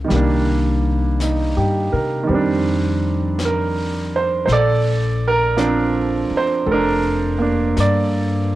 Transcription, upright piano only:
0.00 0.11 A#3 soft
0.00 0.13 D4 soft
0.04 2.22 D#3 soft
0.04 2.26 G3 soft
0.12 2.31 A#3 soft
0.12 2.32 D4 soft
1.22 1.90 D#4 soft
1.57 2.14 G4 soft
1.92 2.50 A#4 soft
2.23 4.45 D#3 soft
2.23 4.47 G3 soft
2.30 4.49 C4 soft
2.34 4.51 D4 soft
3.45 4.11 A#4 soft
4.16 4.44 C5 medium
4.46 4.49 C5 medium
4.52 6.65 A4 soft
4.52 5.26 D5 medium
5.27 6.30 A#4 medium
5.57 8.55 F3 soft
5.57 8.55 C4 soft
5.57 6.72 D4 soft
6.37 6.67 C5 medium
6.66 6.69 A4 soft
6.71 7.40 D4 soft
6.71 7.82 A#4 medium
7.38 8.55 A#3 soft
7.38 8.55 D4 soft
7.80 8.55 D5 medium

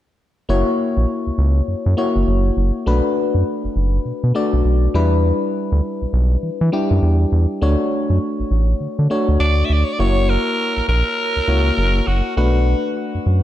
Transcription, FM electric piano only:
0.49 1.50 A#3 medium
0.49 1.51 E4 medium
0.49 1.51 F#4 medium
0.49 1.51 C#5 loud
1.97 2.75 A#3 medium
1.97 2.75 E4 medium
1.97 2.75 F#4 medium
1.97 2.75 C#5 medium
2.86 3.88 A3 medium
2.86 3.88 D4 medium
2.86 3.88 F#4 medium
2.86 3.89 B4 medium
4.35 4.94 A3 medium
4.35 4.93 D4 medium
4.35 4.94 F#4 medium
4.35 4.95 D5 medium
4.94 5.96 G3 medium
4.94 5.96 D4 medium
4.94 5.96 E4 medium
4.94 5.96 B4 medium
6.72 7.50 G3 medium
6.72 7.50 D4 medium
6.72 7.51 E4 medium
6.72 7.51 G4 medium
7.61 8.63 A3 medium
7.61 8.63 D4 medium
7.61 8.64 F#4 medium
7.61 8.64 C#5 medium
9.10 9.88 A3 medium
9.10 9.88 D4 medium
9.10 9.88 F#4 medium
9.10 9.88 C#5 medium
9.99 11.01 A#3 medium
9.99 11.01 E4 medium
9.99 11.01 F#4 medium
9.99 11.01 C#5 medium
11.48 12.25 A#3 medium
11.48 12.26 E4 medium
11.48 12.26 F#4 medium
11.48 12.26 C#5 medium
12.37 13.38 A3 medium
12.37 13.39 D4 medium
12.37 13.39 F#4 medium
12.37 13.39 B4 medium

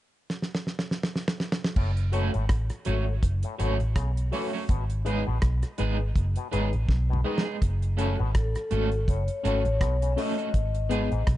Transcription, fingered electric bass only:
1.77 2.30 F#1 loud
2.35 2.49 G#1 medium
2.50 2.69 A1 medium
2.87 3.20 G#1 medium
3.23 3.42 F#1 medium
3.60 3.79 G#1 medium
3.81 3.96 A1 medium
3.96 4.30 B1 medium
4.69 5.23 G#1 medium
5.28 5.42 A1 medium
5.43 5.62 B1 medium
5.80 6.13 G#1 medium
6.16 6.35 F#1 medium
6.53 6.72 G#1 medium
6.74 6.88 A1 medium
6.89 7.22 B1 medium
7.62 8.15 F#1 loud
8.20 8.34 G#1 medium
8.35 8.54 A1 medium
8.72 9.05 G#1 loud
9.08 9.27 F#1 medium
9.45 9.64 G#1 medium
9.66 9.81 A1 medium
9.81 10.15 B1 medium
10.55 11.08 G#1 medium
11.12 11.26 A1 medium
11.28 11.37 B1 medium

